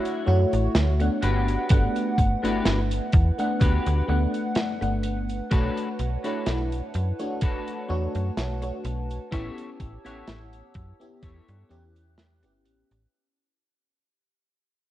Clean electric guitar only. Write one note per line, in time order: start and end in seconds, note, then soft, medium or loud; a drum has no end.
0.00 0.40 D4 medium
0.00 0.40 E4 medium
0.00 0.41 F#4 medium
0.00 0.41 C#5 loud
1.00 muted clean electric guitar stroke medium
1.22 2.18 D4 medium
1.22 2.18 F#4 medium
1.22 2.18 G4 medium
1.22 2.19 B4 loud
2.43 2.78 D4 medium
2.43 2.78 F#4 medium
2.43 2.79 G4 medium
2.43 2.79 B4 loud
3.13 muted clean electric guitar stroke soft
3.60 4.21 D4 medium
3.60 4.21 F#4 medium
3.60 4.22 G4 medium
3.60 4.22 B4 loud
4.81 muted clean electric guitar stroke medium
5.03 muted clean electric guitar stroke soft
5.51 5.88 D4 loud
5.51 5.88 F#4 loud
5.51 5.88 A4 loud
5.51 5.89 B4 loud
6.24 6.59 D4 medium
6.24 6.59 F#4 medium
6.24 6.60 A4 medium
6.24 6.60 B4 loud
6.94 muted clean electric guitar stroke soft
7.41 8.02 D4 medium
7.41 8.02 F#4 medium
7.41 8.03 A4 medium
7.41 8.03 B4 loud
8.62 muted clean electric guitar stroke medium
8.84 muted clean electric guitar stroke soft
9.32 9.69 E4 loud
9.32 9.69 G4 loud
9.32 9.69 A4 loud
9.32 9.69 C#5 loud
10.05 10.40 E4 medium
10.05 10.40 G4 medium
10.05 10.41 A4 medium
10.05 10.41 C#5 loud
10.75 muted clean electric guitar stroke soft
11.22 11.83 E4 medium
11.22 11.83 G4 medium
11.22 11.83 A4 medium
11.22 11.84 C#5 loud
12.43 muted clean electric guitar stroke medium
12.65 muted clean electric guitar stroke soft